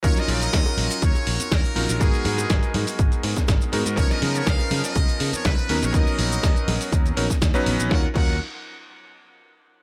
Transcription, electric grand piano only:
X:1
M:4/4
L:1/16
Q:1/4=122
K:Ebm
V:1 name="Electric grand piano"
[G,DEFB]12- [G,DEFB]2 [G,DEFB]2 | [A,CEGB]12- [A,CEGB]2 [A,CEGB]2 | [F,CDEB]12- [F,CDEB]2 [^F,=B,^C^D^A]2 | [^F,=B,^C^D^A]8- [F,B,CDA]2 [F,B,CDA] z2 [F,B,CD=B]3 |
[G,DEFB] z [G,DEFB]2 z12 |]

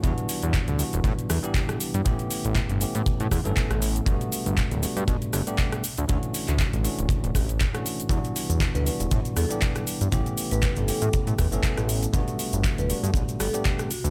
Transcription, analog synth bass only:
X:1
M:4/4
L:1/16
Q:"Swing 16ths" 1/4=119
K:Glyd
V:1 name="Analog synth bass" clef=bass
E,, z2 E,, z D,, z E,,, A,, z E,, z4 G,, | A,,, z2 A,,, z G,,, z A,, z A,, E,, G,,, z A,,,2 z | G,,, z2 G,,, z D,,, z G,, B,,, z G,,, z4 D,, | D,, z2 D,, z A,,, z D,,, z D,,, A,,,2 z4 |
E,, z2 E,, z D,, z E,,, A,, z E,, z4 G,, | A,,, z2 A,,, z G,,, z A,, z A,, E,, G,,, z A,,,2 z | G,,, z2 G,,, z D,,, z G,, B,,, z G,,, z4 D,, |]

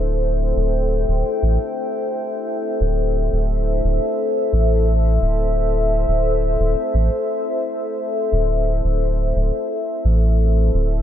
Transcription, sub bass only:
X:1
M:4/4
L:1/16
Q:1/4=87
K:Am
V:1 name="Sub bass" clef=bass
D,,,3 D,,,3 D,,, z A,,, z6 z | D,,,3 D,,,3 D,,, z3 A,,,4 D,,,2- | D,,,3 D,,,3 D,,, z A,,, z6 z | D,,,3 D,,,3 D,,, z3 A,,,4 D,,,2 |]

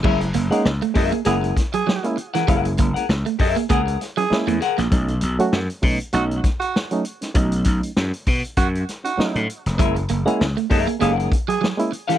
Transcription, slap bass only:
X:1
M:4/4
L:1/16
Q:"Swing 16ths" 1/4=98
K:F#mix
V:1 name="Slap bass" clef=bass
F,,,2 F,,, z C,, z F,, z F,,,2 z6 | F,,,2 F,,, z C,, z F,, z C,,2 z3 E,, z A,,, | B,,,2 B,,, z F,, z B,, z B,,,2 z6 | B,,,2 B,,, z F,, z B,, z F,,2 z3 =A,, z ^E,,, |
F,,,2 F,,, z C,, z F,, z F,,,2 z6 |]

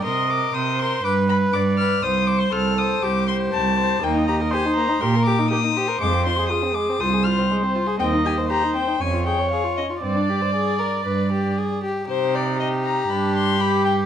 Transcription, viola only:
X:1
M:4/4
L:1/8
Q:1/4=120
K:Cdor
V:1 name="Viola"
e2 c2 =B2 d2 | c2 A2 G4 | [K:Cm] e2 c2 B2 G c- | c2 A2 c4 |
e2 c2 _d4 | d6- d z | E4 D2 G2 |]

